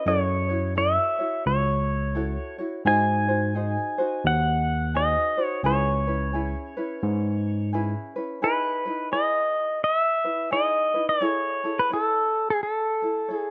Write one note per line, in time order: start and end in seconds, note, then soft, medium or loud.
0.06 0.97 F#2 medium
0.06 0.50 E4 medium
0.06 0.49 F#4 medium
0.06 0.50 A4 medium
0.06 0.48 C#5 medium
0.06 0.73 C#5 medium
0.49 0.75 E4 soft
0.49 0.76 F#4 soft
0.49 0.76 C#5 medium
0.75 1.20 E4 medium
0.75 1.19 F#4 medium
0.75 1.19 A4 medium
0.75 1.17 C#5 medium
0.75 1.46 E5 medium
1.19 2.14 E4 soft
1.19 2.16 F#4 soft
1.19 2.15 C#5 medium
1.46 2.37 C#2 medium
1.46 2.56 C#5 medium
2.15 2.59 E4 medium
2.15 2.58 F#4 medium
2.15 2.59 A4 medium
2.15 2.57 C#5 medium
2.58 2.86 E4 medium
2.58 2.85 F#4 medium
2.58 2.85 C#5 medium
2.85 3.76 G#2 medium
2.85 3.29 D#4 medium
2.85 3.28 F#4 medium
2.85 3.29 G#4 medium
2.85 3.27 C5 medium
2.85 4.26 G#5 loud
3.28 3.54 D#4 soft
3.28 3.55 F#4 soft
3.28 3.55 C5 soft
3.55 3.99 D#4 medium
3.55 3.98 F#4 medium
3.55 3.98 G#4 medium
3.55 3.97 C5 medium
3.98 4.94 D#4 soft
3.98 4.94 F#4 medium
3.98 4.94 C5 medium
4.24 5.15 D#2 medium
4.24 4.98 F#5 loud
4.94 5.38 D#4 medium
4.94 5.37 F#4 medium
4.94 5.38 G#4 medium
4.94 5.36 C5 medium
4.94 5.45 D#5 medium
5.37 5.64 D#4 soft
5.37 5.64 F#4 soft
5.37 5.64 C5 medium
5.45 5.61 C#5 medium
5.63 6.54 C#2 medium
5.63 6.08 C#4 medium
5.63 6.07 E4 medium
5.63 6.07 G#4 medium
5.63 6.06 B4 medium
5.63 7.70 C#5 medium
6.07 6.33 C#4 soft
6.07 6.33 E4 soft
6.07 6.34 B4 soft
6.33 6.77 C#4 medium
6.33 6.76 E4 medium
6.33 6.77 G#4 soft
6.33 6.76 B4 medium
6.77 7.72 C#4 soft
6.77 7.74 E4 medium
6.77 7.74 B4 medium
7.03 7.93 G#2 loud
7.73 8.16 C#4 medium
7.73 8.16 E4 medium
7.73 8.16 G#4 medium
7.73 8.15 B4 medium
8.16 8.42 C#4 soft
8.16 8.42 E4 soft
8.16 8.42 B4 medium
8.42 8.86 D#4 medium
8.42 8.85 E4 medium
8.42 8.86 G#4 medium
8.42 8.84 B4 medium
8.42 9.09 B4 medium
8.85 9.13 D#4 soft
8.85 9.12 E4 soft
8.85 9.12 B4 soft
9.12 10.26 E4 medium
9.12 10.51 G#4 soft
9.12 10.23 B4 medium
9.12 9.84 D#5 medium
9.84 9.95 D#5 loud
9.95 10.52 E5 loud
10.24 10.51 E4 soft
10.24 10.51 B4 soft
10.51 10.95 D#4 medium
10.51 10.94 E4 medium
10.51 10.94 G#4 soft
10.51 10.93 B4 medium
10.51 11.09 D#5 medium
10.94 11.21 D#4 soft
10.94 11.20 E4 soft
10.94 11.20 B4 soft
11.09 11.80 C#5 medium
11.21 11.64 E4 medium
11.21 11.64 G#4 medium
11.21 11.62 A4 medium
11.21 11.64 C#5 medium
11.64 11.91 E4 soft
11.64 11.91 G#4 soft
11.64 11.90 A4 soft
11.79 11.91 B4 medium
11.90 13.02 E4 medium
11.90 13.01 A4 medium
11.90 12.50 A4 medium
11.90 13.03 C#5 soft
12.50 12.62 G#4 medium
12.63 13.34 A4 medium
13.02 13.29 E4 soft
13.02 13.29 A4 soft
13.28 13.51 E4 medium
13.28 13.51 A4 medium
13.28 13.51 C#5 soft
13.34 13.51 G#4 medium